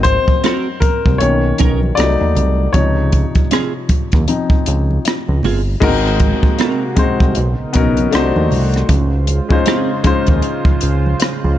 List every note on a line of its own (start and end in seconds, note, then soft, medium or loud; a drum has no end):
0.00 0.18 G#1 loud
0.00 1.16 F#3 soft
0.00 1.17 A#3 soft
0.00 1.17 C4 medium
0.00 0.83 C5 loud
0.04 kick medium
0.04 closed hi-hat medium
0.28 0.35 C2 soft
0.28 kick medium
0.43 0.67 C4 medium
0.43 0.67 F#4 medium
0.43 0.67 A#4 medium
0.43 cross-stick medium
0.43 closed hi-hat medium
0.43 muted conga soft
0.80 0.92 C2 soft
0.80 1.17 A#4 medium
0.80 kick medium
0.80 closed hi-hat medium
0.80 muted conga soft
0.80 high conga medium
1.06 1.19 C2 medium
1.06 kick medium
1.18 1.53 B1 loud
1.18 1.93 D#3 soft
1.18 1.94 A#3 soft
1.18 1.94 C#4 medium
1.18 1.92 C#5 medium
1.18 muted clean electric guitar stroke soft
1.18 closed hi-hat medium
1.58 1.92 B1 medium
1.58 1.80 C#4 medium
1.58 1.80 D#4 medium
1.58 1.80 A#4 medium
1.58 kick medium
1.58 closed hi-hat medium
1.58 muted conga soft
1.83 high conga medium
1.95 2.17 C2 loud
1.95 2.51 F#3 medium
1.95 2.51 A3 soft
1.95 2.51 D#4 medium
1.95 2.75 D5 medium
1.95 closed hi-hat medium
1.95 muted conga soft
2.00 cross-stick loud
2.21 2.34 D#2 medium
2.21 high conga medium
2.35 2.68 C2 medium
2.35 closed hi-hat soft
2.35 low conga medium
2.73 3.26 C#2 loud
2.73 3.86 C3 soft
2.73 3.86 F3 soft
2.73 3.86 D#4 medium
2.73 4.23 C#5 medium
2.73 kick loud
2.73 closed hi-hat medium
2.73 muted conga soft
2.73 low conga medium
3.12 kick medium
3.12 closed hi-hat medium
3.12 muted conga soft
3.35 3.42 D#2 soft
3.35 kick medium
3.35 closed hi-hat soft
3.51 3.72 C4 medium
3.51 3.73 F4 medium
3.51 3.73 G#4 medium
3.51 cross-stick loud
3.51 closed hi-hat medium
3.51 high conga soft
3.89 3.99 D#2 soft
3.89 kick medium
3.89 closed hi-hat medium
3.89 high conga medium
4.12 4.26 D#2 medium
4.12 kick loud
4.12 cross-stick soft
4.12 closed hi-hat soft
4.28 4.62 F3 soft
4.28 4.63 C4 soft
4.28 4.63 D#4 soft
4.28 closed hi-hat medium
4.28 muted conga soft
4.50 4.57 C#2 soft
4.50 kick medium
4.66 4.99 C#2 medium
4.66 closed hi-hat medium
4.91 high conga medium
5.05 cross-stick loud
5.05 closed hi-hat medium
5.05 muted conga soft
5.28 5.41 C#2 medium
5.28 high conga medium
5.43 5.76 G1 medium
5.43 5.60 C4 medium
5.43 5.60 F4 medium
5.43 5.61 G#4 medium
5.43 open hi-hat soft
5.43 muted conga soft
5.43 low conga medium
5.80 6.33 G#1 loud
5.80 7.34 C3 medium
5.80 6.70 G#3 medium
5.80 7.34 G#3 medium
5.80 5.89 A#3 medium
5.80 7.34 A#3 medium
5.80 6.70 D#4 medium
5.80 7.34 F#4 medium
5.80 6.71 F#4 medium
5.80 6.71 A#4 loud
5.80 kick medium
5.80 crash medium
5.80 low conga medium
5.87 6.73 C4 medium
6.06 cross-stick soft
6.20 kick medium
6.20 closed hi-hat medium
6.43 6.50 C2 soft
6.43 kick medium
6.59 6.82 C4 medium
6.59 6.83 F#4 medium
6.59 6.83 A#4 medium
6.59 cross-stick loud
6.59 closed hi-hat medium
6.95 7.07 C2 soft
6.95 7.35 G#3 medium
6.95 7.35 C4 medium
6.95 7.36 D#4 medium
6.95 7.36 F#4 medium
6.95 7.36 C5 medium
6.95 kick medium
6.95 closed hi-hat medium
6.95 muted conga soft
6.95 high conga medium
7.20 7.34 C2 medium
7.20 kick medium
7.20 cross-stick soft
7.35 7.55 B1 medium
7.35 8.12 C#3 medium
7.35 8.12 B3 medium
7.35 8.12 D#4 medium
7.35 8.12 A#4 medium
7.35 closed hi-hat medium
7.60 7.66 B1 soft
7.73 8.07 B1 medium
7.73 8.12 B3 medium
7.73 8.12 C#4 medium
7.73 8.11 D#4 medium
7.73 8.12 F#4 medium
7.73 8.14 A#4 medium
7.73 kick medium
7.73 closed hi-hat medium
7.97 closed hi-hat soft
7.97 high conga medium
8.11 8.32 C2 loud
8.11 8.89 D#3 medium
8.11 8.76 A3 medium
8.11 8.89 A3 medium
8.11 8.76 D4 medium
8.11 8.77 D#4 medium
8.11 8.89 F#4 medium
8.11 8.77 F#4 medium
8.11 11.58 C5 medium
8.11 8.78 C5 medium
8.11 closed hi-hat medium
8.15 cross-stick loud
8.36 8.49 D#2 medium
8.36 high conga medium
8.51 8.83 C2 medium
8.51 open hi-hat soft
8.51 muted conga soft
8.51 low conga medium
8.74 cross-stick soft
8.74 closed hi-hat soft
8.89 9.41 C#2 loud
8.89 11.58 C#3 medium
8.89 11.58 G#3 medium
8.89 11.58 F4 medium
8.89 kick loud
8.89 closed hi-hat medium
8.89 muted conga soft
8.89 low conga medium
9.27 closed hi-hat medium
9.27 muted conga soft
9.49 9.57 D#2 soft
9.49 9.92 G#3 medium
9.49 9.93 C#4 medium
9.49 9.93 D#4 medium
9.49 9.93 F4 medium
9.49 9.94 C5 medium
9.49 kick medium
9.66 9.90 C4 medium
9.66 9.90 F4 medium
9.66 9.91 G#4 medium
9.66 cross-stick medium
9.66 closed hi-hat medium
10.03 10.14 D#2 soft
10.03 11.20 G#3 medium
10.03 11.20 C#4 medium
10.03 11.21 D#4 medium
10.03 11.21 F4 medium
10.03 11.22 C5 loud
10.03 kick medium
10.03 closed hi-hat medium
10.03 muted conga soft
10.03 high conga medium
10.27 10.41 D#2 medium
10.27 kick medium
10.27 closed hi-hat soft
10.42 closed hi-hat medium
10.65 10.72 C#2 soft
10.65 kick medium
10.81 11.14 C#2 medium
10.81 closed hi-hat medium
10.81 muted conga soft
11.06 high conga medium
11.20 cross-stick loud
11.20 closed hi-hat medium
11.20 muted conga soft
11.44 11.57 C#2 loud
11.44 high conga medium